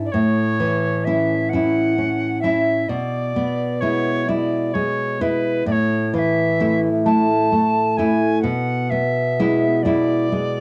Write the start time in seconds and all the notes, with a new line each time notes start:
0.05 D5
0.11 A2 C#5
0.60 E3
1.04 C#4 E4 E5
1.49 F#5
1.53 C#4 E4
1.98 C#4
2.41 C#4 E4 E5
2.88 B2 D5
3.36 B3
3.80 G#3 E4 C#5
4.28 G#3 E4 D5
4.73 G#3 C#5
5.21 G#3 E4 B4
5.66 A2 D5
5.71 C#5
6.14 E3 F5
6.18 E5
6.60 A3 E4
7.05 A3 E4 A5
7.52 A3
7.96 A3 E4 G#5
8.41 B2 F#5
8.89 B3 E5
9.39 G#3 E4
9.82 G#3 E4 D5
10.32 G#3